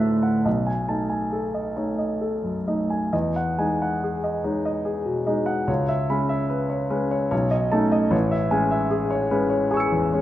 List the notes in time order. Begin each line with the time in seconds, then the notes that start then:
Already playing: A2 B4 D5 F#5 A5 B5 E6 F#6 B6
0.00 A3 E5
0.23 F#5
0.45 B1 D#5
0.67 G#5
0.88 A3 D#4 A5
1.10 G#5
1.33 A4
1.54 D#5
1.77 A3 D#4 C#5
1.98 D#5
2.21 A4
2.43 F#2
2.67 A3 D#4 D#5
2.90 G#5
3.13 E2 D#5
3.36 F#5
3.58 G#3 D#4 G#5
3.82 F#5
4.04 G#4
4.24 D#5
4.44 G#3 D#4 C#5
4.65 D#5
4.85 G#4
5.06 B2
5.27 G#3 D#4 D#5
5.46 F#5
5.67 C#2 C#5
5.88 E5
6.10 G#3 C#4 B5
6.29 E5
6.50 B4
6.70 C#5
6.90 G#3 C#4 B4
7.11 C#5
7.31 B1 C#5
7.51 D#5
7.72 A3 C#4 D#4 A5
7.92 D#5
8.11 A1 C#5
8.31 E5
8.51 G#3 C#4 G#5
8.71 E5
8.91 G#4
9.11 C#5
9.31 G#3 C#4 B4
9.50 C#5
9.71 G#4 G#5 C#6
9.77 E6 C#7
9.92 E2
10.13 G#3 C#4 C#5